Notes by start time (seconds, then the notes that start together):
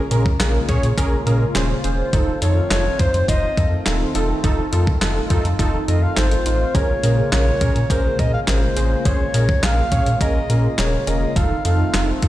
Already playing: C#3 G#3 A#3 F4
0.11 A#2 C#4 G#4 A#4, closed hi-hat
0.26 kick
0.40 A#1 C#4 G#4 A#4, snare, clap, closed hi-hat
0.69 A#2 C#4 G#4 C#5, kick, closed hi-hat
0.83 A#2, closed hi-hat
0.97 A#1 C#4 G#4 A#4, kick, closed hi-hat
1.26 A#2 C#4 G#4 A#4, closed hi-hat
1.55 D#1 C#4 G#4 C5, snare, clap, closed hi-hat
1.84 E1 C#4 G#4 C5, closed hi-hat
2.13 F1 D#3 A3 C4 D#4 F4 A4, kick, closed hi-hat
2.42 F2 D#4 F4 A4 C#5, closed hi-hat
2.71 F1 D#4 F4 A4 C#5, snare, clap, closed hi-hat
2.99 F2 D#4 F4 C5, kick, closed hi-hat
3.14 F2, closed hi-hat
3.28 F1 D#4 F4 C5 D#5, kick, closed hi-hat
3.57 F2 D#4 F4 A4, kick, closed hi-hat
3.86 D#1 D#4 F4 A4, snare, clap, closed hi-hat
4.15 E1 D#4 F4 A4, closed hi-hat
4.44 F1 D#4 F4 A4, kick, closed hi-hat
4.73 F2 D#4 F4 A4, closed hi-hat
4.87 kick
5.01 F1 D#4 F4 A4, snare, clap, closed hi-hat
5.30 F2 D#4 F4 A4, kick, closed hi-hat
5.45 F2, closed hi-hat
5.59 F1 D#4 F4 A4, kick, closed hi-hat
5.88 F2 D#4 F4 A4 D#5, closed hi-hat
6.03 F5
6.17 G#1 D#4 F4 A4 C5, snare, clap, closed hi-hat
6.31 closed hi-hat
6.46 A1 D#4 F4 C5, closed hi-hat
6.74 A#1 C#3 G#3 A#3 C#4 G#4 A#4 C#5, kick, closed hi-hat
7.03 A#2 C#4 G#4 A#4, closed hi-hat
7.32 A#1 C#4 G#4 A#4 C#5, snare, clap, closed hi-hat
7.61 A#2 C#4 G#4 A#4, kick, closed hi-hat
7.76 A#2, closed hi-hat
7.90 A#1 C#4 G#4 A#4 C5, kick, closed hi-hat
8.19 A#2 C#4 G#4 A#4 D#5, kick, closed hi-hat
8.33 F5
8.47 G#1 C#4 G#4 A#4 C5, snare, clap, closed hi-hat
8.76 A1 C#4 G#4 C5, closed hi-hat
9.05 A#1 C#4 G#4 C5 C#5, kick, closed hi-hat
9.34 A#2 C#4 G#4 A#4, closed hi-hat
9.49 kick
9.63 A#1 C#4 G#4 A#4 F5, snare, clap, closed hi-hat
9.92 A#2 C#4 G#4 C#5, kick, closed hi-hat
10.06 A#2, closed hi-hat
10.21 A#1 C#4 G#4 A#4 D#5, kick, closed hi-hat
10.49 A#2 C#4 G#4 A#4, closed hi-hat
10.78 D#1 C#4 G#4 A#4 C#5, snare, clap, closed hi-hat
11.07 E1 C#4 G#4 A#4 D#5, closed hi-hat
11.36 F1 D#3 A3 C4 D#4 F4 A4 F5, kick, closed hi-hat
11.65 F2 D#4 F4 A4 F5, closed hi-hat
11.94 F1 D#4 F4 A4, snare, clap, closed hi-hat
12.22 F2 D#4 F4 A4, kick, closed hi-hat